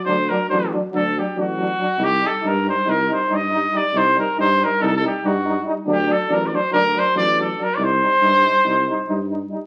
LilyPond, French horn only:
\new Staff \with { instrumentName = "French horn" } { \time 9/8 \tempo 4. = 93 d'8 d'8 d'8 d'8 d'8 d'8 d'8 d'8 d'8 | ees'8 ees'8 ees'8 ees'8 ees'8 ees'8 ees'8 ees'8 ees'8 | ees'8 ees'8 ees'8 ees'8 ees'8 ees'8 ees'8 ees'8 ees'8 | d'8 d'8 d'8 d'8 d'8 d'8 d'8 d'8 d'8 |
ees'8 ees'8 ees'8 ees'8 ees'8 ees'8 ees'8 ees'8 ees'8 | }